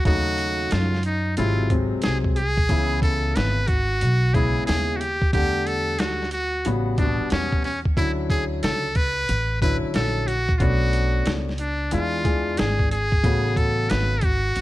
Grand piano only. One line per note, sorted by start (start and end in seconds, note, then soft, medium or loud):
0.05 0.93 C#3 medium
0.05 0.94 F#3 medium
0.05 0.94 A3 medium
0.05 0.94 D#4 medium
1.37 1.66 C3 medium
1.37 1.66 F#3 medium
1.37 1.66 G#3 medium
1.37 1.66 E4 medium
1.71 2.37 C3 medium
1.71 2.37 F#3 medium
1.71 2.37 G#3 medium
1.71 2.37 C4 medium
2.70 3.57 C#3 medium
2.70 3.58 E3 medium
2.70 3.58 B3 medium
2.70 3.58 E4 medium
4.34 5.00 C#3 medium
4.34 5.00 G#3 medium
4.34 5.00 B3 medium
4.34 5.01 E4 medium
5.33 6.21 D3 medium
5.33 6.22 G3 medium
5.33 6.22 A3 medium
5.33 6.22 F#5 medium
6.66 6.94 C#3 medium
6.66 6.94 G3 medium
6.66 6.94 B3 medium
6.66 6.94 F#4 medium
6.98 7.07 C3 medium
6.98 7.64 G3 medium
6.98 7.64 B3 medium
6.98 7.65 F#4 medium
7.04 7.67 B2 medium
7.97 8.85 D3 medium
7.97 8.85 F#3 medium
7.97 8.85 C#4 medium
7.97 8.85 E4 medium
9.61 10.28 D3 medium
9.61 10.28 F#3 medium
9.61 10.28 C#4 medium
9.61 10.28 E4 medium
10.61 11.49 A3 medium
10.61 11.49 B3 medium
10.61 11.49 C#4 medium
10.61 11.49 D4 medium
11.92 12.21 E3 medium
11.92 12.21 G#3 medium
11.92 12.21 D4 medium
11.92 12.21 F4 medium
12.24 12.91 E3 medium
12.24 12.91 G#3 medium
12.24 12.91 D4 medium
12.24 12.91 G#4 medium
13.24 14.12 C#3 medium
13.24 14.12 A3 medium
13.24 14.12 B3 medium
13.24 14.13 F#4 medium